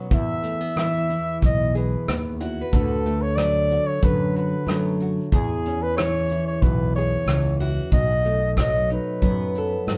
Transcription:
Already playing: nylon-string guitar B2 F#4, steel-string acoustic guitar D#3 B3
0.11 nylon-string guitar E2 E4, fretless electric bass E2, flugelhorn E5, kick, closed hi-hat
0.43 nylon-string guitar A3, closed hi-hat
0.61 nylon-string guitar B3
0.76 nylon-string guitar E3, steel-string acoustic guitar E4, flugelhorn E5, cross-stick, closed hi-hat
1.10 nylon-string guitar E4, closed hi-hat
1.41 fretless electric bass B1, nylon-string guitar B2, kick, closed hi-hat
1.46 flugelhorn D#5
1.75 nylon-string guitar G#4, flugelhorn B4, closed hi-hat
2.08 fretless electric bass D#2, nylon-string guitar B3, cross-stick, closed hi-hat
2.41 nylon-string guitar E4, steel-string acoustic guitar F#4, closed hi-hat
2.61 steel-string acoustic guitar B4
2.73 fretless electric bass D2, nylon-string guitar D3 F#4, flugelhorn A4, kick, closed hi-hat
3.06 nylon-string guitar A3, closed hi-hat
3.22 flugelhorn C#5
3.36 nylon-string guitar F#3, flugelhorn D5, cross-stick, closed hi-hat
3.71 nylon-string guitar F#4, closed hi-hat
3.87 flugelhorn C#5
4.03 fretless electric bass F#2, nylon-string guitar D3, flugelhorn B4, kick, closed hi-hat
4.36 nylon-string guitar F#4, flugelhorn B4, closed hi-hat
4.67 fretless electric bass F#2, nylon-string guitar F#3 A3, cross-stick, closed hi-hat
5.00 nylon-string guitar F#4, closed hi-hat
5.32 fretless electric bass E2, nylon-string guitar E2 E4, steel-string acoustic guitar G#4, flugelhorn G#4, kick, closed hi-hat
5.66 nylon-string guitar C#4, closed hi-hat
5.82 flugelhorn B4
5.97 nylon-string guitar E3, flugelhorn C#5, cross-stick, closed hi-hat
6.30 nylon-string guitar E4, closed hi-hat
6.47 flugelhorn C#5
6.62 fretless electric bass B1, nylon-string guitar B2, flugelhorn B4, kick, closed hi-hat
6.95 nylon-string guitar G#4, flugelhorn C#5, closed hi-hat
7.26 fretless electric bass C#2, nylon-string guitar E3 C#4, cross-stick, closed hi-hat
7.60 nylon-string guitar E4, steel-string acoustic guitar F#4, closed hi-hat
7.92 fretless electric bass B1, nylon-string guitar B2 D#4, flugelhorn D#5, kick, closed hi-hat
8.25 nylon-string guitar A3, closed hi-hat
8.57 nylon-string guitar F#3, flugelhorn D#5, kick, cross-stick, closed hi-hat
8.90 nylon-string guitar D#4, flugelhorn B4, closed hi-hat
9.22 fretless electric bass F#2, nylon-string guitar F#2, steel-string acoustic guitar B3, kick, closed hi-hat
9.55 nylon-string guitar A4, closed hi-hat
9.87 fretless electric bass G#2, nylon-string guitar F#3, cross-stick, closed hi-hat

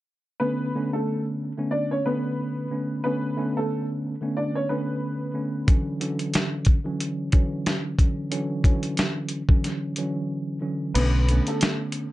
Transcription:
0.40 tine electric piano D3 A3 B3 C#4, upright piano B3 B4
0.75 tine electric piano D3 A3 B3 C#4
0.93 upright piano A3 A4
1.57 tine electric piano D3 A3 B3 C#4
1.71 upright piano D4 D5
1.91 upright piano C#4 C#5
2.06 tine electric piano D3 A3 B3 C#4, upright piano B3 B4
2.70 tine electric piano D3 A3 B3 C#4
3.04 tine electric piano D3 A3 B3 C#4, upright piano B3 B4
3.36 tine electric piano D3 A3 B3 C#4
3.57 upright piano A3 A4
4.21 tine electric piano D3 A3 B3 C#4
4.37 upright piano D4 D5
4.55 upright piano C#4 C#5
4.69 tine electric piano D3 A3 B3 C#4, upright piano B3 B4
5.33 tine electric piano D3 A3 B3 C#4
5.67 tine electric piano D3 E3 F#3 C#4, kick, closed hi-hat
6.00 tine electric piano D3 E3 F#3 C#4, closed hi-hat
6.19 closed hi-hat
6.34 snare, closed hi-hat
6.65 kick, closed hi-hat
6.84 tine electric piano D3 E3 F#3 C#4
7.00 closed hi-hat
7.32 tine electric piano D3 E3 F#3 C#4, kick, closed hi-hat
7.66 snare, closed hi-hat
7.98 tine electric piano D3 E3 F#3 C#4, kick, closed hi-hat
8.31 tine electric piano D3 E3 F#3 C#4, closed hi-hat
8.64 tine electric piano D3 E3 F#3 C#4, kick, closed hi-hat
8.83 closed hi-hat
8.97 snare, closed hi-hat
9.29 closed hi-hat
9.49 tine electric piano D3 E3 F#3 C#4, kick
9.64 snare, closed hi-hat
9.96 tine electric piano D3 E3 F#3 C#4, closed hi-hat
10.61 tine electric piano D3 E3 F#3 C#4
10.94 fingered electric bass B1, tine electric piano D3 A3 B3 C#4, upright piano B3 B4, closed hi-hat, crash
11.29 tine electric piano D3 A3 B3 C#4, closed hi-hat
11.47 upright piano A3 A4, closed hi-hat
11.61 snare, closed hi-hat
11.92 closed hi-hat

